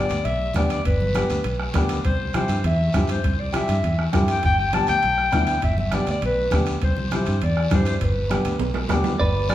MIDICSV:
0, 0, Header, 1, 7, 480
1, 0, Start_track
1, 0, Key_signature, 1, "major"
1, 0, Tempo, 298063
1, 1374, Time_signature, 4, 2, 24, 8
1, 15376, End_track
2, 0, Start_track
2, 0, Title_t, "Clarinet"
2, 0, Program_c, 0, 71
2, 0, Note_on_c, 0, 74, 96
2, 395, Note_on_c, 0, 76, 111
2, 419, Note_off_c, 0, 74, 0
2, 884, Note_off_c, 0, 76, 0
2, 912, Note_on_c, 0, 74, 86
2, 1126, Note_off_c, 0, 74, 0
2, 1151, Note_on_c, 0, 74, 84
2, 1366, Note_off_c, 0, 74, 0
2, 1389, Note_on_c, 0, 71, 82
2, 2759, Note_off_c, 0, 71, 0
2, 3294, Note_on_c, 0, 72, 88
2, 3741, Note_off_c, 0, 72, 0
2, 3796, Note_on_c, 0, 72, 83
2, 4233, Note_off_c, 0, 72, 0
2, 4285, Note_on_c, 0, 76, 102
2, 4942, Note_off_c, 0, 76, 0
2, 5009, Note_on_c, 0, 72, 92
2, 5471, Note_on_c, 0, 74, 79
2, 5495, Note_off_c, 0, 72, 0
2, 5704, Note_off_c, 0, 74, 0
2, 5728, Note_on_c, 0, 76, 92
2, 6609, Note_off_c, 0, 76, 0
2, 6927, Note_on_c, 0, 79, 92
2, 7137, Note_off_c, 0, 79, 0
2, 7164, Note_on_c, 0, 79, 99
2, 7375, Note_off_c, 0, 79, 0
2, 7396, Note_on_c, 0, 79, 88
2, 7631, Note_on_c, 0, 81, 100
2, 7656, Note_off_c, 0, 79, 0
2, 7865, Note_off_c, 0, 81, 0
2, 7876, Note_on_c, 0, 79, 107
2, 9003, Note_off_c, 0, 79, 0
2, 9079, Note_on_c, 0, 76, 94
2, 9292, Note_off_c, 0, 76, 0
2, 9337, Note_on_c, 0, 76, 81
2, 9573, Note_on_c, 0, 74, 85
2, 9597, Note_off_c, 0, 76, 0
2, 9796, Note_off_c, 0, 74, 0
2, 9834, Note_on_c, 0, 74, 88
2, 10031, Note_off_c, 0, 74, 0
2, 10072, Note_on_c, 0, 71, 93
2, 10716, Note_off_c, 0, 71, 0
2, 11012, Note_on_c, 0, 72, 83
2, 11443, Note_off_c, 0, 72, 0
2, 11486, Note_on_c, 0, 72, 81
2, 11974, Note_on_c, 0, 74, 92
2, 11998, Note_off_c, 0, 72, 0
2, 12435, Note_off_c, 0, 74, 0
2, 12459, Note_on_c, 0, 72, 74
2, 12663, Note_off_c, 0, 72, 0
2, 12689, Note_on_c, 0, 72, 79
2, 12790, Note_off_c, 0, 72, 0
2, 12927, Note_on_c, 0, 71, 81
2, 14287, Note_off_c, 0, 71, 0
2, 15376, End_track
3, 0, Start_track
3, 0, Title_t, "Clean electric guitar"
3, 0, Program_c, 1, 27
3, 14809, Note_on_c, 1, 74, 85
3, 14828, Note_on_c, 1, 71, 70
3, 15258, Note_off_c, 1, 74, 0
3, 15268, Note_off_c, 1, 71, 0
3, 15292, Note_on_c, 1, 74, 90
3, 15311, Note_on_c, 1, 71, 67
3, 15376, Note_off_c, 1, 71, 0
3, 15376, Note_off_c, 1, 74, 0
3, 15376, End_track
4, 0, Start_track
4, 0, Title_t, "Upright piano"
4, 0, Program_c, 2, 0
4, 0, Note_on_c, 2, 59, 65
4, 0, Note_on_c, 2, 62, 60
4, 0, Note_on_c, 2, 67, 72
4, 261, Note_off_c, 2, 59, 0
4, 266, Note_off_c, 2, 62, 0
4, 270, Note_off_c, 2, 67, 0
4, 913, Note_on_c, 2, 59, 70
4, 929, Note_on_c, 2, 67, 69
4, 930, Note_on_c, 2, 62, 58
4, 1239, Note_off_c, 2, 59, 0
4, 1247, Note_off_c, 2, 67, 0
4, 1248, Note_off_c, 2, 62, 0
4, 1859, Note_on_c, 2, 59, 67
4, 1867, Note_on_c, 2, 62, 57
4, 1876, Note_on_c, 2, 67, 75
4, 2193, Note_off_c, 2, 59, 0
4, 2197, Note_off_c, 2, 62, 0
4, 2201, Note_off_c, 2, 67, 0
4, 2823, Note_on_c, 2, 62, 72
4, 2824, Note_on_c, 2, 59, 80
4, 2828, Note_on_c, 2, 67, 84
4, 3155, Note_off_c, 2, 62, 0
4, 3156, Note_off_c, 2, 59, 0
4, 3158, Note_off_c, 2, 67, 0
4, 3773, Note_on_c, 2, 60, 66
4, 3777, Note_on_c, 2, 64, 61
4, 3784, Note_on_c, 2, 67, 73
4, 4111, Note_off_c, 2, 60, 0
4, 4113, Note_off_c, 2, 64, 0
4, 4116, Note_off_c, 2, 67, 0
4, 4740, Note_on_c, 2, 60, 67
4, 4752, Note_on_c, 2, 64, 63
4, 4756, Note_on_c, 2, 67, 69
4, 5075, Note_off_c, 2, 60, 0
4, 5081, Note_off_c, 2, 64, 0
4, 5083, Note_off_c, 2, 67, 0
4, 5677, Note_on_c, 2, 60, 67
4, 5682, Note_on_c, 2, 67, 77
4, 5687, Note_on_c, 2, 64, 60
4, 6023, Note_off_c, 2, 60, 0
4, 6026, Note_off_c, 2, 67, 0
4, 6029, Note_off_c, 2, 64, 0
4, 6646, Note_on_c, 2, 60, 80
4, 6655, Note_on_c, 2, 67, 89
4, 6661, Note_on_c, 2, 64, 70
4, 6988, Note_off_c, 2, 60, 0
4, 6993, Note_off_c, 2, 67, 0
4, 6995, Note_off_c, 2, 64, 0
4, 7619, Note_on_c, 2, 59, 66
4, 7620, Note_on_c, 2, 62, 59
4, 7638, Note_on_c, 2, 67, 74
4, 7955, Note_off_c, 2, 59, 0
4, 7955, Note_off_c, 2, 62, 0
4, 7964, Note_off_c, 2, 67, 0
4, 8567, Note_on_c, 2, 59, 79
4, 8573, Note_on_c, 2, 62, 72
4, 8589, Note_on_c, 2, 64, 82
4, 8908, Note_off_c, 2, 59, 0
4, 8912, Note_off_c, 2, 62, 0
4, 8920, Note_off_c, 2, 64, 0
4, 9552, Note_on_c, 2, 59, 65
4, 9555, Note_on_c, 2, 62, 64
4, 9561, Note_on_c, 2, 67, 76
4, 9881, Note_off_c, 2, 59, 0
4, 9883, Note_off_c, 2, 62, 0
4, 9886, Note_off_c, 2, 67, 0
4, 10508, Note_on_c, 2, 59, 65
4, 10512, Note_on_c, 2, 62, 62
4, 10519, Note_on_c, 2, 67, 77
4, 10839, Note_off_c, 2, 59, 0
4, 10841, Note_off_c, 2, 62, 0
4, 10845, Note_off_c, 2, 67, 0
4, 11474, Note_on_c, 2, 60, 66
4, 11481, Note_on_c, 2, 64, 63
4, 11491, Note_on_c, 2, 67, 73
4, 11802, Note_off_c, 2, 60, 0
4, 11806, Note_off_c, 2, 64, 0
4, 11810, Note_off_c, 2, 67, 0
4, 12431, Note_on_c, 2, 64, 61
4, 12435, Note_on_c, 2, 60, 65
4, 12450, Note_on_c, 2, 67, 71
4, 12760, Note_off_c, 2, 64, 0
4, 12762, Note_off_c, 2, 60, 0
4, 12769, Note_off_c, 2, 67, 0
4, 13361, Note_on_c, 2, 59, 68
4, 13369, Note_on_c, 2, 62, 62
4, 13386, Note_on_c, 2, 67, 75
4, 13705, Note_off_c, 2, 59, 0
4, 13709, Note_off_c, 2, 62, 0
4, 13717, Note_off_c, 2, 67, 0
4, 14334, Note_on_c, 2, 59, 83
4, 14336, Note_on_c, 2, 62, 75
4, 14345, Note_on_c, 2, 67, 84
4, 14671, Note_off_c, 2, 59, 0
4, 14672, Note_off_c, 2, 62, 0
4, 14676, Note_off_c, 2, 67, 0
4, 15281, Note_on_c, 2, 59, 69
4, 15289, Note_on_c, 2, 62, 65
4, 15295, Note_on_c, 2, 67, 76
4, 15376, Note_off_c, 2, 59, 0
4, 15376, Note_off_c, 2, 62, 0
4, 15376, Note_off_c, 2, 67, 0
4, 15376, End_track
5, 0, Start_track
5, 0, Title_t, "Fingered electric bass"
5, 0, Program_c, 3, 33
5, 169, Note_on_c, 3, 38, 79
5, 362, Note_off_c, 3, 38, 0
5, 407, Note_on_c, 3, 35, 92
5, 793, Note_off_c, 3, 35, 0
5, 894, Note_on_c, 3, 38, 79
5, 1278, Note_off_c, 3, 38, 0
5, 1381, Note_on_c, 3, 31, 89
5, 1954, Note_off_c, 3, 31, 0
5, 2096, Note_on_c, 3, 38, 79
5, 2287, Note_off_c, 3, 38, 0
5, 2330, Note_on_c, 3, 35, 89
5, 2716, Note_off_c, 3, 35, 0
5, 2826, Note_on_c, 3, 38, 84
5, 3206, Note_off_c, 3, 38, 0
5, 3299, Note_on_c, 3, 36, 88
5, 3874, Note_off_c, 3, 36, 0
5, 4006, Note_on_c, 3, 43, 80
5, 4202, Note_off_c, 3, 43, 0
5, 4254, Note_on_c, 3, 40, 94
5, 4640, Note_off_c, 3, 40, 0
5, 4744, Note_on_c, 3, 43, 83
5, 5125, Note_off_c, 3, 43, 0
5, 5217, Note_on_c, 3, 36, 81
5, 5794, Note_off_c, 3, 36, 0
5, 5937, Note_on_c, 3, 43, 80
5, 6129, Note_off_c, 3, 43, 0
5, 6177, Note_on_c, 3, 40, 81
5, 6561, Note_off_c, 3, 40, 0
5, 6666, Note_on_c, 3, 43, 79
5, 7047, Note_off_c, 3, 43, 0
5, 7151, Note_on_c, 3, 31, 87
5, 7722, Note_off_c, 3, 31, 0
5, 7873, Note_on_c, 3, 38, 83
5, 8059, Note_off_c, 3, 38, 0
5, 8116, Note_on_c, 3, 35, 89
5, 8493, Note_off_c, 3, 35, 0
5, 8585, Note_on_c, 3, 38, 79
5, 8966, Note_off_c, 3, 38, 0
5, 9062, Note_on_c, 3, 31, 88
5, 9636, Note_off_c, 3, 31, 0
5, 9785, Note_on_c, 3, 38, 85
5, 9974, Note_off_c, 3, 38, 0
5, 10025, Note_on_c, 3, 35, 90
5, 10406, Note_off_c, 3, 35, 0
5, 10510, Note_on_c, 3, 38, 77
5, 10889, Note_off_c, 3, 38, 0
5, 10994, Note_on_c, 3, 36, 88
5, 11563, Note_off_c, 3, 36, 0
5, 11718, Note_on_c, 3, 43, 79
5, 11902, Note_off_c, 3, 43, 0
5, 11959, Note_on_c, 3, 40, 86
5, 12335, Note_off_c, 3, 40, 0
5, 12426, Note_on_c, 3, 43, 79
5, 12806, Note_off_c, 3, 43, 0
5, 12911, Note_on_c, 3, 31, 86
5, 13481, Note_off_c, 3, 31, 0
5, 13614, Note_on_c, 3, 38, 76
5, 13807, Note_off_c, 3, 38, 0
5, 13845, Note_on_c, 3, 35, 88
5, 14233, Note_off_c, 3, 35, 0
5, 14330, Note_on_c, 3, 38, 78
5, 14716, Note_off_c, 3, 38, 0
5, 14819, Note_on_c, 3, 31, 83
5, 15376, Note_off_c, 3, 31, 0
5, 15376, End_track
6, 0, Start_track
6, 0, Title_t, "Two-headed folk drums"
6, 897, Note_on_c, 9, 36, 78
6, 903, Note_on_c, 9, 37, 77
6, 1058, Note_off_c, 9, 36, 0
6, 1064, Note_off_c, 9, 37, 0
6, 1378, Note_on_c, 9, 36, 76
6, 1539, Note_off_c, 9, 36, 0
6, 1859, Note_on_c, 9, 37, 77
6, 2020, Note_off_c, 9, 37, 0
6, 2570, Note_on_c, 9, 37, 63
6, 2731, Note_off_c, 9, 37, 0
6, 2818, Note_on_c, 9, 36, 78
6, 2826, Note_on_c, 9, 37, 81
6, 2979, Note_off_c, 9, 36, 0
6, 2987, Note_off_c, 9, 37, 0
6, 3297, Note_on_c, 9, 36, 76
6, 3458, Note_off_c, 9, 36, 0
6, 3773, Note_on_c, 9, 37, 77
6, 3934, Note_off_c, 9, 37, 0
6, 4737, Note_on_c, 9, 36, 78
6, 4737, Note_on_c, 9, 37, 74
6, 4898, Note_off_c, 9, 37, 0
6, 4899, Note_off_c, 9, 36, 0
6, 5216, Note_on_c, 9, 36, 77
6, 5377, Note_off_c, 9, 36, 0
6, 5696, Note_on_c, 9, 37, 78
6, 5857, Note_off_c, 9, 37, 0
6, 6422, Note_on_c, 9, 37, 66
6, 6583, Note_off_c, 9, 37, 0
6, 6666, Note_on_c, 9, 36, 76
6, 6668, Note_on_c, 9, 37, 75
6, 6827, Note_off_c, 9, 36, 0
6, 6829, Note_off_c, 9, 37, 0
6, 7148, Note_on_c, 9, 36, 80
6, 7309, Note_off_c, 9, 36, 0
6, 7638, Note_on_c, 9, 37, 76
6, 7799, Note_off_c, 9, 37, 0
6, 8340, Note_on_c, 9, 37, 60
6, 8501, Note_off_c, 9, 37, 0
6, 8582, Note_on_c, 9, 37, 80
6, 8584, Note_on_c, 9, 36, 73
6, 8743, Note_off_c, 9, 37, 0
6, 8745, Note_off_c, 9, 36, 0
6, 9060, Note_on_c, 9, 36, 74
6, 9221, Note_off_c, 9, 36, 0
6, 9526, Note_on_c, 9, 37, 79
6, 9687, Note_off_c, 9, 37, 0
6, 10500, Note_on_c, 9, 37, 78
6, 10504, Note_on_c, 9, 36, 81
6, 10661, Note_off_c, 9, 37, 0
6, 10665, Note_off_c, 9, 36, 0
6, 10986, Note_on_c, 9, 36, 72
6, 11147, Note_off_c, 9, 36, 0
6, 11466, Note_on_c, 9, 37, 74
6, 11627, Note_off_c, 9, 37, 0
6, 12190, Note_on_c, 9, 37, 66
6, 12351, Note_off_c, 9, 37, 0
6, 12423, Note_on_c, 9, 37, 75
6, 12426, Note_on_c, 9, 36, 82
6, 12584, Note_off_c, 9, 37, 0
6, 12587, Note_off_c, 9, 36, 0
6, 12903, Note_on_c, 9, 36, 72
6, 13064, Note_off_c, 9, 36, 0
6, 13388, Note_on_c, 9, 37, 81
6, 13549, Note_off_c, 9, 37, 0
6, 14097, Note_on_c, 9, 37, 62
6, 14258, Note_off_c, 9, 37, 0
6, 14331, Note_on_c, 9, 37, 80
6, 14334, Note_on_c, 9, 36, 76
6, 14492, Note_off_c, 9, 37, 0
6, 14496, Note_off_c, 9, 36, 0
6, 14816, Note_on_c, 9, 36, 80
6, 14977, Note_off_c, 9, 36, 0
6, 15301, Note_on_c, 9, 37, 83
6, 15376, Note_off_c, 9, 37, 0
6, 15376, End_track
7, 0, Start_track
7, 0, Title_t, "Drums"
7, 148, Note_on_c, 9, 73, 61
7, 171, Note_on_c, 9, 65, 62
7, 309, Note_off_c, 9, 73, 0
7, 332, Note_off_c, 9, 65, 0
7, 386, Note_on_c, 9, 74, 61
7, 404, Note_on_c, 9, 65, 61
7, 548, Note_off_c, 9, 74, 0
7, 565, Note_off_c, 9, 65, 0
7, 867, Note_on_c, 9, 73, 62
7, 875, Note_on_c, 9, 63, 79
7, 897, Note_on_c, 9, 65, 62
7, 1028, Note_off_c, 9, 73, 0
7, 1036, Note_off_c, 9, 63, 0
7, 1058, Note_off_c, 9, 65, 0
7, 1113, Note_on_c, 9, 73, 63
7, 1132, Note_on_c, 9, 65, 65
7, 1274, Note_off_c, 9, 73, 0
7, 1293, Note_off_c, 9, 65, 0
7, 1369, Note_on_c, 9, 74, 64
7, 1375, Note_on_c, 9, 65, 61
7, 1530, Note_off_c, 9, 74, 0
7, 1536, Note_off_c, 9, 65, 0
7, 1619, Note_on_c, 9, 63, 63
7, 1780, Note_off_c, 9, 63, 0
7, 1842, Note_on_c, 9, 73, 63
7, 1845, Note_on_c, 9, 63, 75
7, 1860, Note_on_c, 9, 65, 68
7, 2003, Note_off_c, 9, 73, 0
7, 2006, Note_off_c, 9, 63, 0
7, 2021, Note_off_c, 9, 65, 0
7, 2086, Note_on_c, 9, 73, 66
7, 2098, Note_on_c, 9, 65, 62
7, 2247, Note_off_c, 9, 73, 0
7, 2259, Note_off_c, 9, 65, 0
7, 2323, Note_on_c, 9, 65, 66
7, 2323, Note_on_c, 9, 74, 65
7, 2484, Note_off_c, 9, 65, 0
7, 2484, Note_off_c, 9, 74, 0
7, 2799, Note_on_c, 9, 65, 68
7, 2799, Note_on_c, 9, 66, 63
7, 2800, Note_on_c, 9, 73, 64
7, 2806, Note_on_c, 9, 63, 76
7, 2960, Note_off_c, 9, 65, 0
7, 2960, Note_off_c, 9, 66, 0
7, 2961, Note_off_c, 9, 73, 0
7, 2967, Note_off_c, 9, 63, 0
7, 3046, Note_on_c, 9, 65, 66
7, 3046, Note_on_c, 9, 73, 61
7, 3207, Note_off_c, 9, 65, 0
7, 3207, Note_off_c, 9, 73, 0
7, 3285, Note_on_c, 9, 74, 63
7, 3294, Note_on_c, 9, 65, 63
7, 3446, Note_off_c, 9, 74, 0
7, 3455, Note_off_c, 9, 65, 0
7, 3753, Note_on_c, 9, 73, 62
7, 3773, Note_on_c, 9, 65, 66
7, 3781, Note_on_c, 9, 63, 76
7, 3914, Note_off_c, 9, 73, 0
7, 3934, Note_off_c, 9, 65, 0
7, 3942, Note_off_c, 9, 63, 0
7, 3997, Note_on_c, 9, 73, 68
7, 4015, Note_on_c, 9, 65, 62
7, 4159, Note_off_c, 9, 73, 0
7, 4176, Note_off_c, 9, 65, 0
7, 4236, Note_on_c, 9, 74, 62
7, 4255, Note_on_c, 9, 65, 64
7, 4398, Note_off_c, 9, 74, 0
7, 4416, Note_off_c, 9, 65, 0
7, 4718, Note_on_c, 9, 73, 64
7, 4738, Note_on_c, 9, 63, 78
7, 4739, Note_on_c, 9, 65, 64
7, 4879, Note_off_c, 9, 73, 0
7, 4899, Note_off_c, 9, 63, 0
7, 4900, Note_off_c, 9, 65, 0
7, 4952, Note_on_c, 9, 73, 64
7, 4978, Note_on_c, 9, 65, 64
7, 5113, Note_off_c, 9, 73, 0
7, 5139, Note_off_c, 9, 65, 0
7, 5186, Note_on_c, 9, 74, 65
7, 5221, Note_on_c, 9, 65, 62
7, 5347, Note_off_c, 9, 74, 0
7, 5382, Note_off_c, 9, 65, 0
7, 5678, Note_on_c, 9, 73, 64
7, 5698, Note_on_c, 9, 65, 66
7, 5700, Note_on_c, 9, 63, 71
7, 5839, Note_off_c, 9, 73, 0
7, 5859, Note_off_c, 9, 65, 0
7, 5861, Note_off_c, 9, 63, 0
7, 5925, Note_on_c, 9, 73, 66
7, 5941, Note_on_c, 9, 65, 63
7, 6086, Note_off_c, 9, 73, 0
7, 6102, Note_off_c, 9, 65, 0
7, 6165, Note_on_c, 9, 74, 63
7, 6184, Note_on_c, 9, 65, 61
7, 6326, Note_off_c, 9, 74, 0
7, 6345, Note_off_c, 9, 65, 0
7, 6653, Note_on_c, 9, 65, 65
7, 6653, Note_on_c, 9, 66, 68
7, 6654, Note_on_c, 9, 73, 69
7, 6658, Note_on_c, 9, 63, 77
7, 6814, Note_off_c, 9, 65, 0
7, 6814, Note_off_c, 9, 66, 0
7, 6815, Note_off_c, 9, 73, 0
7, 6819, Note_off_c, 9, 63, 0
7, 6893, Note_on_c, 9, 65, 64
7, 6899, Note_on_c, 9, 73, 63
7, 7054, Note_off_c, 9, 65, 0
7, 7060, Note_off_c, 9, 73, 0
7, 7132, Note_on_c, 9, 65, 59
7, 7133, Note_on_c, 9, 74, 66
7, 7293, Note_off_c, 9, 65, 0
7, 7294, Note_off_c, 9, 74, 0
7, 7603, Note_on_c, 9, 73, 60
7, 7617, Note_on_c, 9, 65, 64
7, 7619, Note_on_c, 9, 63, 81
7, 7764, Note_off_c, 9, 73, 0
7, 7778, Note_off_c, 9, 65, 0
7, 7780, Note_off_c, 9, 63, 0
7, 7841, Note_on_c, 9, 73, 65
7, 7860, Note_on_c, 9, 65, 64
7, 8002, Note_off_c, 9, 73, 0
7, 8021, Note_off_c, 9, 65, 0
7, 8081, Note_on_c, 9, 74, 65
7, 8095, Note_on_c, 9, 65, 61
7, 8242, Note_off_c, 9, 74, 0
7, 8256, Note_off_c, 9, 65, 0
7, 8562, Note_on_c, 9, 73, 65
7, 8575, Note_on_c, 9, 65, 62
7, 8585, Note_on_c, 9, 63, 78
7, 8723, Note_off_c, 9, 73, 0
7, 8736, Note_off_c, 9, 65, 0
7, 8746, Note_off_c, 9, 63, 0
7, 8805, Note_on_c, 9, 73, 66
7, 8808, Note_on_c, 9, 65, 63
7, 8966, Note_off_c, 9, 73, 0
7, 8969, Note_off_c, 9, 65, 0
7, 9044, Note_on_c, 9, 74, 64
7, 9055, Note_on_c, 9, 65, 61
7, 9205, Note_off_c, 9, 74, 0
7, 9216, Note_off_c, 9, 65, 0
7, 9304, Note_on_c, 9, 63, 62
7, 9465, Note_off_c, 9, 63, 0
7, 9530, Note_on_c, 9, 65, 70
7, 9533, Note_on_c, 9, 73, 59
7, 9541, Note_on_c, 9, 63, 79
7, 9691, Note_off_c, 9, 65, 0
7, 9694, Note_off_c, 9, 73, 0
7, 9702, Note_off_c, 9, 63, 0
7, 9768, Note_on_c, 9, 73, 67
7, 9776, Note_on_c, 9, 65, 61
7, 9929, Note_off_c, 9, 73, 0
7, 9937, Note_off_c, 9, 65, 0
7, 10000, Note_on_c, 9, 74, 63
7, 10019, Note_on_c, 9, 65, 64
7, 10161, Note_off_c, 9, 74, 0
7, 10180, Note_off_c, 9, 65, 0
7, 10486, Note_on_c, 9, 63, 78
7, 10492, Note_on_c, 9, 73, 69
7, 10497, Note_on_c, 9, 65, 65
7, 10647, Note_off_c, 9, 63, 0
7, 10653, Note_off_c, 9, 73, 0
7, 10658, Note_off_c, 9, 65, 0
7, 10722, Note_on_c, 9, 73, 68
7, 10734, Note_on_c, 9, 65, 61
7, 10883, Note_off_c, 9, 73, 0
7, 10895, Note_off_c, 9, 65, 0
7, 10955, Note_on_c, 9, 74, 66
7, 10976, Note_on_c, 9, 65, 63
7, 11116, Note_off_c, 9, 74, 0
7, 11137, Note_off_c, 9, 65, 0
7, 11214, Note_on_c, 9, 63, 63
7, 11375, Note_off_c, 9, 63, 0
7, 11450, Note_on_c, 9, 73, 66
7, 11461, Note_on_c, 9, 63, 78
7, 11462, Note_on_c, 9, 65, 64
7, 11611, Note_off_c, 9, 73, 0
7, 11622, Note_off_c, 9, 63, 0
7, 11624, Note_off_c, 9, 65, 0
7, 11683, Note_on_c, 9, 73, 65
7, 11702, Note_on_c, 9, 65, 62
7, 11844, Note_off_c, 9, 73, 0
7, 11863, Note_off_c, 9, 65, 0
7, 11925, Note_on_c, 9, 74, 64
7, 11942, Note_on_c, 9, 65, 60
7, 12086, Note_off_c, 9, 74, 0
7, 12103, Note_off_c, 9, 65, 0
7, 12402, Note_on_c, 9, 73, 65
7, 12418, Note_on_c, 9, 63, 80
7, 12421, Note_on_c, 9, 65, 65
7, 12421, Note_on_c, 9, 66, 67
7, 12563, Note_off_c, 9, 73, 0
7, 12579, Note_off_c, 9, 63, 0
7, 12582, Note_off_c, 9, 65, 0
7, 12582, Note_off_c, 9, 66, 0
7, 12648, Note_on_c, 9, 73, 66
7, 12663, Note_on_c, 9, 65, 64
7, 12809, Note_off_c, 9, 73, 0
7, 12824, Note_off_c, 9, 65, 0
7, 12883, Note_on_c, 9, 74, 68
7, 12900, Note_on_c, 9, 65, 63
7, 13044, Note_off_c, 9, 74, 0
7, 13061, Note_off_c, 9, 65, 0
7, 13366, Note_on_c, 9, 73, 58
7, 13379, Note_on_c, 9, 63, 75
7, 13380, Note_on_c, 9, 65, 67
7, 13527, Note_off_c, 9, 73, 0
7, 13540, Note_off_c, 9, 63, 0
7, 13541, Note_off_c, 9, 65, 0
7, 13600, Note_on_c, 9, 73, 60
7, 13607, Note_on_c, 9, 65, 65
7, 13761, Note_off_c, 9, 73, 0
7, 13768, Note_off_c, 9, 65, 0
7, 13841, Note_on_c, 9, 65, 68
7, 13841, Note_on_c, 9, 74, 67
7, 14002, Note_off_c, 9, 65, 0
7, 14002, Note_off_c, 9, 74, 0
7, 14077, Note_on_c, 9, 66, 74
7, 14238, Note_off_c, 9, 66, 0
7, 14317, Note_on_c, 9, 66, 93
7, 14327, Note_on_c, 9, 73, 65
7, 14343, Note_on_c, 9, 63, 81
7, 14478, Note_off_c, 9, 66, 0
7, 14488, Note_off_c, 9, 73, 0
7, 14504, Note_off_c, 9, 63, 0
7, 14560, Note_on_c, 9, 66, 87
7, 14568, Note_on_c, 9, 73, 61
7, 14721, Note_off_c, 9, 66, 0
7, 14729, Note_off_c, 9, 73, 0
7, 14813, Note_on_c, 9, 74, 72
7, 14974, Note_off_c, 9, 74, 0
7, 15282, Note_on_c, 9, 73, 68
7, 15291, Note_on_c, 9, 63, 76
7, 15376, Note_off_c, 9, 63, 0
7, 15376, Note_off_c, 9, 73, 0
7, 15376, End_track
0, 0, End_of_file